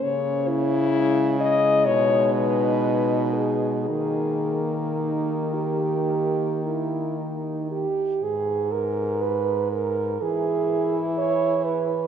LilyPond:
<<
  \new Staff \with { instrumentName = "French horn" } { \time 4/4 \key gis \minor \tempo 4 = 60 cis''8 e'4 dis''8 cis''8 b'4 gis'8 | gis'8 r8 g'2 r4 | b'2 b'4 gis'4 | }
  \new Staff \with { instrumentName = "French horn" } { \time 4/4 \key gis \minor des'4. r8 dis'2~ | dis'4 dis'8 g'4 e'8 dis'8 g'8 | gis'8 ais'8 b'8 ais'8 gis'4 cis''8 b'8 | }
  \new Staff \with { instrumentName = "French horn" } { \time 4/4 \key gis \minor bes8 r8 gis2. | ais2.~ ais8 r8 | r2 e'2 | }
  \new Staff \with { instrumentName = "French horn" } { \clef bass \time 4/4 \key gis \minor cis2 b,2 | dis2.~ dis8 r8 | gis,2 e2 | }
>>